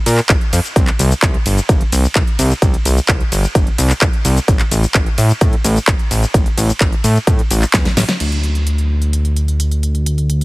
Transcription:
0.06 0.21 A#2 medium
0.06 open hi-hat loud
0.06 ride medium
0.06 shaker medium
0.18 clap soft
0.18 closed hi-hat soft
0.18 shaker soft
0.29 0.37 A#1 loud
0.29 kick loud
0.29 clap loud
0.29 closed hi-hat medium
0.29 shaker soft
0.41 closed hi-hat soft
0.53 0.60 F2 medium
0.53 open hi-hat loud
0.53 ride medium
0.53 shaker medium
0.65 closed hi-hat soft
0.65 shaker soft
0.76 0.90 C2 loud
0.76 kick loud
0.76 closed hi-hat medium
0.76 shaker soft
0.87 clap soft
0.87 closed hi-hat soft
0.99 1.14 C2 medium
0.99 open hi-hat loud
0.99 ride medium
0.99 shaker medium
1.11 closed hi-hat soft
1.11 shaker soft
1.22 1.37 C2 loud
1.22 kick loud
1.22 clap loud
1.22 closed hi-hat medium
1.22 shaker soft
1.34 closed hi-hat soft
1.46 1.60 G1 loud
1.46 open hi-hat loud
1.46 ride medium
1.46 shaker medium
1.57 closed hi-hat soft
1.57 shaker soft
1.69 1.83 G1 medium
1.69 kick loud
1.69 closed hi-hat medium
1.69 shaker soft
1.81 closed hi-hat soft
1.92 2.07 C2 medium
1.92 open hi-hat loud
1.92 ride medium
1.92 shaker medium
2.04 closed hi-hat soft
2.04 shaker soft
2.15 2.23 C2 loud
2.15 kick loud
2.15 clap loud
2.15 closed hi-hat medium
2.15 shaker soft
2.27 closed hi-hat soft
2.39 2.53 C2 medium
2.39 open hi-hat loud
2.39 ride medium
2.39 shaker medium
2.50 closed hi-hat soft
2.50 shaker soft
2.62 2.76 C2 loud
2.62 kick loud
2.62 closed hi-hat medium
2.62 shaker soft
2.74 closed hi-hat soft
2.85 3.00 C2 medium
2.85 open hi-hat loud
2.85 ride medium
2.85 shaker medium
2.97 closed hi-hat soft
2.97 shaker soft
3.08 3.23 C2 loud
3.08 kick loud
3.08 clap loud
3.08 closed hi-hat medium
3.08 shaker soft
3.20 closed hi-hat soft
3.32 3.46 G1 loud
3.32 open hi-hat loud
3.32 ride medium
3.32 shaker medium
3.44 closed hi-hat soft
3.44 shaker soft
3.55 3.69 G1 medium
3.55 kick loud
3.55 closed hi-hat medium
3.55 shaker soft
3.67 closed hi-hat soft
3.78 3.93 C2 medium
3.78 open hi-hat loud
3.78 ride medium
3.78 shaker medium
3.90 clap soft
3.90 closed hi-hat soft
3.90 shaker soft
4.01 4.09 C2 loud
4.01 kick loud
4.01 clap loud
4.01 closed hi-hat medium
4.01 shaker soft
4.13 closed hi-hat soft
4.25 4.39 C2 medium
4.25 open hi-hat loud
4.25 ride medium
4.25 shaker medium
4.36 closed hi-hat soft
4.36 shaker soft
4.48 4.62 A1 loud
4.48 kick loud
4.48 closed hi-hat medium
4.48 shaker soft
4.59 clap soft
4.59 closed hi-hat soft
4.71 4.86 A1 medium
4.71 open hi-hat loud
4.71 ride medium
4.71 shaker medium
4.83 closed hi-hat soft
4.83 shaker soft
4.94 5.09 A1 loud
4.94 kick loud
4.94 clap loud
4.94 closed hi-hat loud
5.06 closed hi-hat soft
5.18 5.32 A2 loud
5.18 open hi-hat loud
5.18 ride medium
5.18 shaker medium
5.29 closed hi-hat soft
5.29 shaker soft
5.41 5.55 A2 medium
5.41 kick loud
5.41 closed hi-hat medium
5.41 shaker soft
5.53 closed hi-hat soft
5.64 5.79 A1 medium
5.64 open hi-hat loud
5.64 ride medium
5.64 shaker medium
5.76 closed hi-hat soft
5.76 shaker soft
5.87 5.95 A1 loud
5.87 kick loud
5.87 clap loud
5.87 closed hi-hat loud
5.99 closed hi-hat soft
6.11 6.25 A1 medium
6.11 open hi-hat loud
6.11 ride medium
6.11 shaker medium
6.23 closed hi-hat soft
6.23 shaker soft
6.34 6.48 A1 loud
6.34 kick loud
6.34 closed hi-hat loud
6.34 shaker soft
6.46 closed hi-hat soft
6.58 6.72 A1 medium
6.58 open hi-hat loud
6.58 ride medium
6.58 shaker medium
6.69 closed hi-hat soft
6.69 shaker soft
6.80 6.95 A1 loud
6.80 kick loud
6.80 clap loud
6.80 closed hi-hat medium
6.80 shaker soft
6.92 closed hi-hat soft
7.04 7.18 A2 loud
7.04 open hi-hat loud
7.04 ride medium
7.04 shaker medium
7.16 closed hi-hat soft
7.16 shaker soft
7.27 7.41 A2 medium
7.27 kick loud
7.27 closed hi-hat loud
7.27 shaker soft
7.39 closed hi-hat soft
7.51 7.65 A1 medium
7.51 open hi-hat loud
7.51 ride medium
7.51 shaker medium
7.62 clap soft
7.62 closed hi-hat soft
7.62 shaker soft
7.73 7.88 E2 medium
7.73 kick loud
7.73 snare medium
7.73 clap loud
7.73 closed hi-hat loud
7.73 shaker soft
7.85 snare medium
7.85 closed hi-hat soft
7.97 8.04 A1 medium
7.97 snare medium
7.97 open hi-hat loud
7.97 ride medium
7.97 shaker medium
8.09 snare medium
8.09 closed hi-hat soft
8.09 shaker soft
8.20 10.44 D2 medium
8.20 closed hi-hat medium
8.20 crash medium
8.32 closed hi-hat soft
8.43 closed hi-hat medium
8.55 closed hi-hat soft
8.67 closed hi-hat medium
8.78 closed hi-hat soft
9.02 closed hi-hat soft
9.13 closed hi-hat medium
9.25 closed hi-hat soft
9.37 closed hi-hat medium
9.48 closed hi-hat soft
9.60 closed hi-hat medium
9.71 closed hi-hat soft
9.83 closed hi-hat medium
9.95 closed hi-hat soft
10.06 closed hi-hat medium
10.18 closed hi-hat soft
10.30 closed hi-hat medium
10.41 closed hi-hat soft

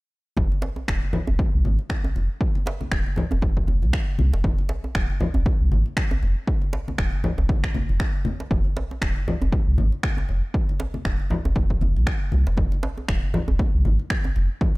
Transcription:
0.37 0.50 F1 medium
0.37 kick loud
0.37 low conga medium
0.52 muted conga soft
0.62 djembe slap loud
0.62 djembe tone medium
0.76 djembe tone medium
0.88 1.00 D#1 medium
0.88 finger snap medium
0.88 kick loud
1.02 muted conga soft
1.13 djembe tone medium
1.13 low conga loud
1.27 1.37 F1 loud
1.27 djembe tone medium
1.27 djembe bass medium
1.39 kick loud
1.39 muted conga medium
1.39 high conga medium
1.54 1.63 C2 medium
1.65 1.77 G#1 medium
1.65 high conga medium
1.79 muted conga soft
1.89 finger snap loud
1.89 kick loud
1.89 high conga medium
2.04 djembe tone medium
2.04 djembe bass medium
2.15 2.28 F1 medium
2.15 muted conga medium
2.41 kick loud
2.55 muted conga medium
2.66 djembe slap loud
2.66 djembe tone medium
2.81 djembe tone medium
2.81 high conga medium
2.92 3.04 D#1 medium
2.92 finger snap loud
2.92 kick loud
3.06 muted conga soft
3.16 djembe tone medium
3.16 low conga loud
3.31 3.41 F1 loud
3.31 djembe tone medium
3.31 djembe bass medium
3.42 3.84 F1 medium
3.42 kick loud
3.42 muted conga soft
3.42 high conga medium
3.57 kick medium
3.67 high conga medium
3.67 djembe bass medium
3.82 3.92 C2 loud
3.82 muted conga soft
3.82 high conga medium
3.93 finger snap loud
3.93 kick loud
4.19 4.31 C2 medium
4.19 muted conga medium
4.19 high conga loud
4.33 4.43 F1 medium
4.33 djembe slap medium
4.44 4.57 F1 loud
4.44 kick loud
4.44 low conga medium
4.58 muted conga soft
4.69 djembe slap medium
4.69 djembe tone medium
4.84 djembe tone medium
4.95 5.07 D#1 medium
4.95 finger snap loud
4.95 kick loud
5.10 muted conga soft
5.20 djembe tone medium
5.20 low conga loud
5.34 5.44 F1 loud
5.34 djembe tone medium
5.34 djembe bass medium
5.46 kick loud
5.46 muted conga soft
5.46 high conga medium
5.60 5.70 C2 medium
5.71 5.84 G#1 medium
5.71 high conga loud
5.86 muted conga soft
5.97 finger snap loud
5.97 kick loud
5.97 high conga medium
6.11 djembe tone loud
6.11 djembe bass medium
6.22 6.34 F1 medium
6.22 muted conga soft
6.47 kick loud
6.62 muted conga soft
6.73 djembe slap loud
6.73 djembe tone medium
6.88 high conga medium
6.88 djembe tone medium
6.98 7.11 D#1 medium
6.98 finger snap loud
6.98 kick loud
7.13 muted conga soft
7.24 djembe tone medium
7.24 low conga loud
7.38 7.48 F1 loud
7.38 djembe tone medium
7.38 djembe bass medium
7.49 kick loud
7.49 muted conga soft
7.49 high conga medium
7.64 finger snap medium
7.64 kick medium
7.74 high conga medium
7.74 djembe bass medium
7.89 7.98 F1 medium
7.89 muted conga soft
7.89 high conga medium
8.00 finger snap loud
8.00 kick loud
8.25 muted conga soft
8.25 high conga loud
8.40 djembe slap medium
8.51 8.63 F1 loud
8.51 kick loud
8.51 low conga medium
8.64 muted conga soft
8.77 djembe slap loud
8.77 djembe tone medium
8.91 djembe tone medium
9.02 9.14 D#1 medium
9.02 finger snap loud
9.02 kick loud
9.16 muted conga soft
9.28 djembe tone medium
9.28 low conga loud
9.42 9.51 F1 loud
9.42 djembe tone medium
9.42 djembe bass medium
9.52 kick loud
9.52 muted conga soft
9.52 high conga medium
9.67 9.76 C2 medium
9.78 9.90 G#1 medium
9.78 high conga loud
9.92 muted conga soft
10.03 finger snap loud
10.03 kick loud
10.03 high conga medium
10.17 djembe tone medium
10.17 djembe bass medium
10.29 10.41 F1 medium
10.29 muted conga soft
10.54 kick loud
10.69 muted conga soft
10.80 djembe slap medium
10.80 djembe tone medium
10.94 high conga medium
10.94 djembe tone medium
11.05 11.17 D#1 medium
11.05 finger snap loud
11.05 kick loud
11.20 muted conga soft
11.30 djembe tone medium
11.30 low conga loud
11.45 11.54 F1 loud
11.45 djembe tone medium
11.45 djembe bass medium
11.55 11.97 F1 medium
11.55 kick loud
11.55 muted conga soft
11.55 high conga medium
11.70 kick medium
11.81 high conga medium
11.81 djembe bass medium
11.96 12.05 C2 loud
11.96 muted conga soft
11.96 high conga soft
12.07 finger snap loud
12.07 kick loud
12.32 12.45 C2 medium
12.32 muted conga soft
12.32 high conga medium
12.47 12.56 F1 medium
12.47 djembe slap medium
12.57 12.70 F1 loud
12.57 kick loud
12.57 low conga medium
12.72 muted conga medium
12.83 djembe slap loud
12.83 djembe tone medium
12.98 djembe tone medium
13.08 13.21 D#1 medium
13.08 finger snap medium
13.08 kick loud
13.23 muted conga soft
13.34 djembe tone medium
13.34 low conga loud
13.48 13.58 F1 loud
13.48 djembe tone medium
13.48 djembe bass medium
13.59 kick loud
13.59 muted conga medium
13.59 high conga medium
13.74 13.83 C2 medium
13.85 13.97 G#1 loud
13.85 high conga loud
13.99 muted conga soft
14.10 finger snap loud
14.10 kick loud
14.10 high conga medium
14.24 djembe tone medium
14.24 djembe bass medium
14.36 14.48 F1 medium
14.36 muted conga soft
14.61 kick loud
14.61 low conga medium

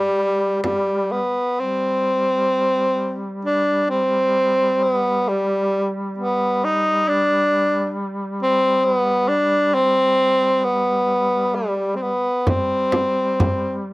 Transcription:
0.00 0.62 G3 medium
0.00 1.41 G3 soft
0.63 1.13 G3 medium
0.63 frame drum medium
1.12 1.61 B3 medium
1.58 12.31 G3 soft
1.58 3.28 C4 medium
3.45 3.88 D4 medium
3.90 4.85 C4 medium
4.83 5.30 B3 medium
5.29 5.91 G3 medium
6.19 6.66 B3 medium
6.64 7.10 D#4 medium
7.09 7.96 D4 medium
8.43 8.86 C4 medium
8.85 9.30 B3 medium
9.28 9.76 D4 medium
9.74 10.66 C4 medium
10.64 11.56 B3 medium
11.55 11.97 G3 medium
11.95 12.03 C4 soft
12.02 12.48 B3 medium
12.47 13.93 G3 soft
12.47 13.82 C4 medium
12.47 frame drum medium
12.92 frame drum medium
13.40 frame drum medium

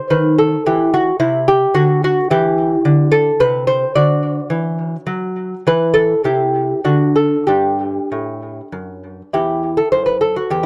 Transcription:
0.00 0.61 D#4 soft
0.10 0.55 D#3 medium
0.10 0.37 B4 medium
0.38 0.65 A4 medium
0.66 1.10 E3 medium
0.66 0.93 E4 soft
0.66 0.92 G4 medium
0.94 1.19 F#4 medium
1.20 1.64 C3 medium
1.20 1.46 E4 medium
1.48 1.75 G4 medium
1.74 2.19 D3 medium
1.74 2.02 F#4 medium
2.04 2.31 F#4 medium
2.30 2.74 E3 medium
2.30 3.91 E4 soft
2.30 3.09 G4 medium
2.85 3.29 D3 medium
3.12 3.39 A4 medium
3.40 3.84 C3 medium
3.40 3.67 B4 loud
3.67 3.94 C5 medium
3.95 4.39 D3 medium
3.95 5.62 F#4 soft
3.95 5.17 D5 medium
4.50 4.95 E3 medium
5.07 5.54 F#3 medium
5.67 6.13 E3 medium
5.67 6.21 E4 soft
5.67 5.95 B4 medium
5.94 6.22 A4 medium
6.24 6.72 C3 medium
6.24 6.81 E4 soft
6.24 6.82 G4 medium
6.84 7.34 D3 medium
6.84 7.43 D4 soft
6.84 7.14 F#4 medium
7.16 7.46 A4 medium
7.47 7.98 G2 soft
7.47 9.30 D4 soft
7.47 8.67 G4 medium
8.12 8.60 A2 soft
8.72 9.21 F#2 soft
9.33 9.80 E2 soft
9.33 10.36 E4 soft
9.33 9.75 G4 medium
9.77 9.91 A4 medium
9.92 10.38 F#2 soft
9.92 10.05 C5 medium
10.06 10.20 B4 medium
10.21 10.35 A4 medium
10.36 10.50 F#4 medium
10.50 10.66 E2 soft
10.50 10.64 G4 medium

